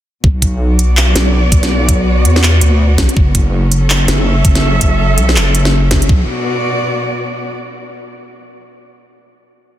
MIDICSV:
0, 0, Header, 1, 4, 480
1, 0, Start_track
1, 0, Key_signature, 2, "minor"
1, 0, Tempo, 365854
1, 314, Time_signature, 4, 2, 24, 8
1, 12843, End_track
2, 0, Start_track
2, 0, Title_t, "Cello section"
2, 0, Program_c, 0, 48
2, 319, Note_on_c, 0, 47, 72
2, 467, Note_on_c, 0, 66, 75
2, 694, Note_on_c, 0, 59, 91
2, 896, Note_on_c, 0, 74, 75
2, 4152, Note_on_c, 0, 54, 84
2, 4156, Note_off_c, 0, 47, 0
2, 4161, Note_off_c, 0, 74, 0
2, 4294, Note_on_c, 0, 61, 84
2, 4843, Note_off_c, 0, 66, 0
2, 4973, Note_on_c, 0, 69, 82
2, 5309, Note_on_c, 0, 76, 91
2, 5587, Note_off_c, 0, 59, 0
2, 7992, Note_off_c, 0, 76, 0
2, 7993, Note_off_c, 0, 54, 0
2, 7993, Note_off_c, 0, 61, 0
2, 7993, Note_on_c, 0, 47, 77
2, 7994, Note_off_c, 0, 69, 0
2, 8075, Note_on_c, 0, 59, 76
2, 8153, Note_on_c, 0, 66, 78
2, 8215, Note_on_c, 0, 74, 75
2, 9859, Note_off_c, 0, 59, 0
2, 9860, Note_off_c, 0, 66, 0
2, 9861, Note_off_c, 0, 47, 0
2, 9862, Note_off_c, 0, 74, 0
2, 12843, End_track
3, 0, Start_track
3, 0, Title_t, "Wobble bass"
3, 0, Program_c, 1, 39
3, 313, Note_on_c, 1, 35, 103
3, 1501, Note_off_c, 1, 35, 0
3, 1515, Note_on_c, 1, 35, 91
3, 1982, Note_off_c, 1, 35, 0
3, 1994, Note_on_c, 1, 35, 84
3, 2953, Note_on_c, 1, 40, 102
3, 2972, Note_off_c, 1, 35, 0
3, 3421, Note_off_c, 1, 40, 0
3, 3434, Note_on_c, 1, 38, 103
3, 3901, Note_off_c, 1, 38, 0
3, 3914, Note_on_c, 1, 35, 103
3, 4044, Note_off_c, 1, 35, 0
3, 4153, Note_on_c, 1, 30, 99
3, 5341, Note_off_c, 1, 30, 0
3, 5353, Note_on_c, 1, 30, 96
3, 5821, Note_off_c, 1, 30, 0
3, 5834, Note_on_c, 1, 30, 85
3, 6794, Note_on_c, 1, 35, 102
3, 6814, Note_off_c, 1, 30, 0
3, 7036, Note_on_c, 1, 30, 98
3, 7056, Note_off_c, 1, 35, 0
3, 7982, Note_off_c, 1, 30, 0
3, 7994, Note_on_c, 1, 35, 97
3, 8217, Note_off_c, 1, 35, 0
3, 12843, End_track
4, 0, Start_track
4, 0, Title_t, "Drums"
4, 313, Note_on_c, 9, 36, 119
4, 444, Note_off_c, 9, 36, 0
4, 553, Note_on_c, 9, 36, 60
4, 555, Note_on_c, 9, 42, 83
4, 684, Note_off_c, 9, 36, 0
4, 687, Note_off_c, 9, 42, 0
4, 1037, Note_on_c, 9, 42, 68
4, 1168, Note_off_c, 9, 42, 0
4, 1274, Note_on_c, 9, 39, 116
4, 1406, Note_off_c, 9, 39, 0
4, 1516, Note_on_c, 9, 38, 81
4, 1516, Note_on_c, 9, 42, 83
4, 1647, Note_off_c, 9, 38, 0
4, 1647, Note_off_c, 9, 42, 0
4, 1993, Note_on_c, 9, 36, 108
4, 1995, Note_on_c, 9, 42, 70
4, 2124, Note_off_c, 9, 36, 0
4, 2127, Note_off_c, 9, 42, 0
4, 2139, Note_on_c, 9, 38, 55
4, 2139, Note_on_c, 9, 42, 38
4, 2270, Note_off_c, 9, 38, 0
4, 2270, Note_off_c, 9, 42, 0
4, 2473, Note_on_c, 9, 36, 63
4, 2475, Note_on_c, 9, 42, 83
4, 2604, Note_off_c, 9, 36, 0
4, 2606, Note_off_c, 9, 42, 0
4, 2953, Note_on_c, 9, 42, 70
4, 3085, Note_off_c, 9, 42, 0
4, 3098, Note_on_c, 9, 38, 65
4, 3194, Note_on_c, 9, 39, 120
4, 3229, Note_off_c, 9, 38, 0
4, 3325, Note_off_c, 9, 39, 0
4, 3430, Note_on_c, 9, 42, 82
4, 3561, Note_off_c, 9, 42, 0
4, 3913, Note_on_c, 9, 36, 63
4, 3913, Note_on_c, 9, 38, 83
4, 3913, Note_on_c, 9, 42, 69
4, 4044, Note_off_c, 9, 36, 0
4, 4044, Note_off_c, 9, 38, 0
4, 4044, Note_off_c, 9, 42, 0
4, 4054, Note_on_c, 9, 42, 39
4, 4153, Note_on_c, 9, 36, 127
4, 4186, Note_off_c, 9, 42, 0
4, 4284, Note_off_c, 9, 36, 0
4, 4393, Note_on_c, 9, 36, 61
4, 4393, Note_on_c, 9, 42, 79
4, 4524, Note_off_c, 9, 36, 0
4, 4524, Note_off_c, 9, 42, 0
4, 4875, Note_on_c, 9, 42, 66
4, 5006, Note_off_c, 9, 42, 0
4, 5115, Note_on_c, 9, 39, 122
4, 5247, Note_off_c, 9, 39, 0
4, 5356, Note_on_c, 9, 38, 76
4, 5356, Note_on_c, 9, 42, 83
4, 5487, Note_off_c, 9, 38, 0
4, 5487, Note_off_c, 9, 42, 0
4, 5833, Note_on_c, 9, 36, 116
4, 5835, Note_on_c, 9, 42, 67
4, 5964, Note_off_c, 9, 36, 0
4, 5966, Note_off_c, 9, 42, 0
4, 5975, Note_on_c, 9, 38, 52
4, 5975, Note_on_c, 9, 42, 39
4, 6107, Note_off_c, 9, 38, 0
4, 6107, Note_off_c, 9, 42, 0
4, 6312, Note_on_c, 9, 42, 77
4, 6314, Note_on_c, 9, 36, 66
4, 6443, Note_off_c, 9, 42, 0
4, 6445, Note_off_c, 9, 36, 0
4, 6793, Note_on_c, 9, 42, 66
4, 6924, Note_off_c, 9, 42, 0
4, 6939, Note_on_c, 9, 38, 59
4, 7036, Note_on_c, 9, 39, 123
4, 7070, Note_off_c, 9, 38, 0
4, 7167, Note_off_c, 9, 39, 0
4, 7277, Note_on_c, 9, 42, 75
4, 7408, Note_off_c, 9, 42, 0
4, 7418, Note_on_c, 9, 38, 57
4, 7549, Note_off_c, 9, 38, 0
4, 7753, Note_on_c, 9, 38, 75
4, 7753, Note_on_c, 9, 42, 68
4, 7754, Note_on_c, 9, 36, 64
4, 7884, Note_off_c, 9, 38, 0
4, 7884, Note_off_c, 9, 42, 0
4, 7885, Note_off_c, 9, 36, 0
4, 7898, Note_on_c, 9, 42, 37
4, 7994, Note_on_c, 9, 36, 113
4, 8030, Note_off_c, 9, 42, 0
4, 8126, Note_off_c, 9, 36, 0
4, 12843, End_track
0, 0, End_of_file